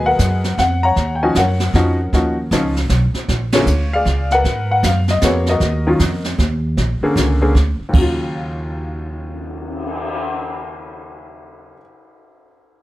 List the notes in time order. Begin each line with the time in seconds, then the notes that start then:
Already playing: D#2 F#3 G#3 B3 G#4 D#5
0.06 A#4 B4 F#5
0.19 F#2, kick, snare, hi-hat pedal
0.44 snare
0.58 F2 F#5, kick, snare
0.83 C#5 F#5 A#5
0.96 D#2, brush sweep, kick, snare
1.15 G5
1.23 F3 C#4 D#4 F#4 G#5
1.35 F#2 A#4 F#5, kick, snare, hi-hat pedal
1.39 C#5
1.60 snare
1.74 F2 F3 C#4 D#4 F#4, kick, snare
2.13 D#2 F3 C#4 D#4 F#4, brush sweep, kick, snare
2.51 C#2 F3 C#4 D#4 F4, kick, snare, hi-hat pedal
2.77 snare
2.89 B1, kick, snare, hi-hat pedal
3.13 muted upright bass stroke, snare
3.28 A#1, brush sweep, kick, snare
3.52 D3 A#3 C#4 F4 G#4 C#5, snare, ride
3.66 D2, hi-hat pedal
3.93 G#4 D5 F5
4.06 C#2, kick, snare
4.31 A#4 B4 F#5, snare
4.44 G#2, brush sweep, kick, snare
4.71 F#5
4.83 F#2 F5, kick, snare, hi-hat pedal
5.08 D#5, snare
5.21 F2 A#3 B3 F#4 G#4 C#5, kick, snare, hi-hat pedal
5.46 D#5, snare
5.50 F#4 A#4
5.60 D#2, brush sweep, kick, snare
5.87 D#3 F#3 C#4 F4
5.99 F2, kick, snare, hi-hat pedal
6.24 snare
6.38 D#2, kick, snare
6.77 A#1, brush sweep, kick, snare
7.01 D3 A#3 C#4 G#4, muted upright bass stroke
7.16 C#2, kick, snare, hi-hat pedal
7.41 D3 A#3 C#4 G#4
7.55 D2, kick, snare
7.80 muted upright bass stroke
7.89 D#2 C#3
7.93 D#2 F#3, kick, crash
8.01 F4
8.18 cymbal swell